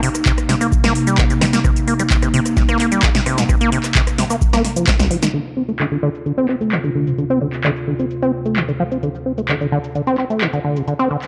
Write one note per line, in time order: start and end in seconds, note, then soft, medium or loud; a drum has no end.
0.00 5.30 C3 medium
0.00 0.09 C3 medium
0.00 5.30 A#3 medium
0.00 5.30 D#4 loud
0.00 open hi-hat loud
0.15 cross-stick soft
0.15 closed hi-hat medium
0.15 shaker medium
0.26 0.32 C3 loud
0.26 kick loud
0.26 clap loud
0.26 shaker medium
0.38 cross-stick medium
0.38 closed hi-hat medium
0.38 shaker soft
0.49 0.56 C3 medium
0.49 snare medium
0.49 open hi-hat loud
0.61 0.67 A#3 medium
0.61 cross-stick soft
0.61 open hi-hat medium
0.61 shaker medium
0.72 kick loud
0.72 shaker medium
0.84 0.93 A#3 loud
0.84 cross-stick medium
0.84 snare medium
0.84 closed hi-hat soft
0.84 shaker soft
0.95 open hi-hat loud
1.07 1.20 G3 medium
1.07 closed hi-hat medium
1.07 shaker medium
1.18 1.25 C3 loud
1.18 kick loud
1.18 cross-stick soft
1.18 clap loud
1.18 shaker medium
1.30 1.34 C3 medium
1.30 closed hi-hat soft
1.30 shaker soft
1.41 1.45 D#3 loud
1.41 cross-stick medium
1.41 snare medium
1.41 open hi-hat loud
1.53 1.59 A#3 medium
1.53 snare medium
1.53 closed hi-hat medium
1.53 shaker medium
1.64 1.71 C3 medium
1.64 kick loud
1.64 cross-stick medium
1.64 shaker medium
1.76 closed hi-hat medium
1.76 shaker soft
1.88 1.94 A#3 medium
1.88 open hi-hat loud
1.99 2.03 G3 medium
1.99 cross-stick soft
1.99 closed hi-hat medium
1.99 shaker medium
2.10 2.17 C3 medium
2.10 kick loud
2.10 clap loud
2.10 shaker medium
2.22 2.29 C3 medium
2.22 cross-stick medium
2.22 closed hi-hat medium
2.22 shaker soft
2.34 2.40 C3 loud
2.34 open hi-hat loud
2.46 cross-stick soft
2.46 closed hi-hat medium
2.46 shaker medium
2.57 2.63 C3 medium
2.57 kick loud
2.57 snare soft
2.57 shaker medium
2.69 2.78 A#3 loud
2.69 cross-stick medium
2.69 closed hi-hat soft
2.69 shaker soft
2.79 2.86 A#3 medium
2.79 clap soft
2.79 open hi-hat loud
2.92 3.04 G3 medium
2.92 closed hi-hat medium
2.92 shaker medium
3.02 3.09 C3 loud
3.02 kick loud
3.02 cross-stick soft
3.02 clap loud
3.02 shaker medium
3.15 3.21 C3 medium
3.15 snare medium
3.15 closed hi-hat soft
3.15 shaker soft
3.26 3.39 C3 medium
3.26 cross-stick medium
3.26 open hi-hat loud
3.38 3.44 A#2 medium
3.38 snare medium
3.38 closed hi-hat medium
3.38 shaker medium
3.49 3.56 C3 medium
3.49 kick loud
3.49 cross-stick medium
3.49 shaker medium
3.61 3.70 A#3 loud
3.61 closed hi-hat medium
3.61 shaker soft
3.72 3.79 C3 medium
3.72 open hi-hat loud
3.84 cross-stick soft
3.84 clap soft
3.84 closed hi-hat medium
3.84 shaker medium
3.95 4.02 C3 loud
3.95 kick loud
3.95 clap loud
3.95 shaker medium
4.07 cross-stick medium
4.07 closed hi-hat medium
4.07 shaker soft
4.18 4.25 C3 medium
4.18 snare medium
4.18 open hi-hat loud
4.30 4.36 A#3 medium
4.30 cross-stick soft
4.30 open hi-hat medium
4.30 shaker medium
4.41 kick loud
4.41 shaker medium
4.53 4.63 A#3 loud
4.53 cross-stick medium
4.53 snare medium
4.53 closed hi-hat soft
4.53 shaker soft
4.65 snare soft
4.65 open hi-hat loud
4.76 4.86 F3 medium
4.76 closed hi-hat medium
4.76 shaker medium
4.87 4.91 C4 medium
4.87 kick loud
4.87 snare medium
4.87 clap loud
4.87 shaker medium
4.99 5.09 C2 loud
4.99 snare medium
4.99 closed hi-hat soft
4.99 shaker soft
5.11 5.17 F3 medium
5.11 open hi-hat loud
5.22 5.29 D#3 medium
5.22 snare medium
5.22 closed hi-hat medium
5.22 shaker medium
5.34 11.27 D2 medium
5.34 11.27 C3 medium
5.34 5.40 D3 medium
5.34 11.27 F4 medium
5.34 shaker medium
5.46 shaker soft
5.57 5.63 C4 medium
5.69 5.72 A3 medium
5.69 closed hi-hat medium
5.69 shaker medium
5.79 5.86 D3 medium
5.79 clap loud
5.79 closed hi-hat medium
5.79 shaker soft
5.92 5.98 D3 medium
5.92 shaker soft
6.03 6.09 D3 loud
6.15 closed hi-hat soft
6.15 shaker medium
6.26 6.32 D3 medium
6.26 closed hi-hat medium
6.26 shaker medium
6.38 6.47 C4 medium
6.38 closed hi-hat soft
6.38 shaker soft
6.49 6.56 C4 medium
6.49 clap soft
6.61 6.74 A3 medium
6.61 closed hi-hat medium
6.61 shaker medium
6.72 6.79 D3 loud
6.72 clap loud
6.72 closed hi-hat medium
6.72 shaker medium
6.84 6.90 D3 medium
6.84 closed hi-hat soft
6.84 shaker soft
6.95 7.09 D3 medium
7.07 7.13 C3 medium
7.07 closed hi-hat medium
7.07 shaker medium
7.18 7.25 D3 medium
7.18 closed hi-hat medium
7.18 shaker soft
7.30 7.39 C4 loud
7.30 closed hi-hat soft
7.30 shaker soft
7.41 7.48 D3 medium
7.53 clap soft
7.53 closed hi-hat soft
7.53 shaker medium
7.64 7.71 D3 loud
7.64 clap loud
7.64 closed hi-hat medium
7.64 shaker soft
7.76 closed hi-hat soft
7.76 shaker soft
7.88 7.94 D3 medium
7.99 8.06 C4 medium
7.99 closed hi-hat soft
7.99 shaker medium
8.11 closed hi-hat medium
8.11 shaker soft
8.22 8.32 C4 medium
8.22 closed hi-hat soft
8.22 shaker soft
8.46 8.58 A3 medium
8.46 closed hi-hat soft
8.46 shaker medium
8.56 8.63 D3 loud
8.56 clap loud
8.56 closed hi-hat medium
8.56 shaker soft
8.69 8.72 D3 medium
8.69 closed hi-hat soft
8.69 shaker soft
8.80 8.84 F3 loud
8.92 8.98 C4 medium
8.92 closed hi-hat soft
8.92 shaker medium
9.03 9.09 D3 medium
9.03 closed hi-hat medium
9.03 shaker soft
9.15 shaker soft
9.26 9.32 C4 medium
9.38 9.42 A3 medium
9.38 closed hi-hat soft
9.38 shaker medium
9.49 9.56 D3 medium
9.49 clap loud
9.49 closed hi-hat medium
9.49 shaker soft
9.61 9.67 D3 medium
9.61 shaker soft
9.72 9.79 D3 loud
9.84 closed hi-hat soft
9.84 shaker medium
9.95 10.02 D3 medium
9.95 closed hi-hat medium
9.95 shaker soft
10.07 10.16 C4 loud
10.07 closed hi-hat soft
10.07 shaker soft
10.18 10.25 C4 medium
10.18 clap soft
10.30 10.43 A3 medium
10.30 closed hi-hat soft
10.30 shaker medium
10.41 10.48 D3 loud
10.41 clap loud
10.41 closed hi-hat medium
10.41 shaker medium
10.53 10.59 D3 medium
10.53 closed hi-hat soft
10.53 shaker soft
10.64 10.78 D3 medium
10.76 10.82 C3 medium
10.76 closed hi-hat soft
10.76 shaker medium
10.88 10.94 D3 medium
10.88 closed hi-hat medium
10.88 shaker medium
10.99 11.09 C4 loud
10.99 closed hi-hat soft
10.99 shaker soft
11.11 11.17 D3 medium
11.22 clap soft
11.22 closed hi-hat soft
11.22 shaker medium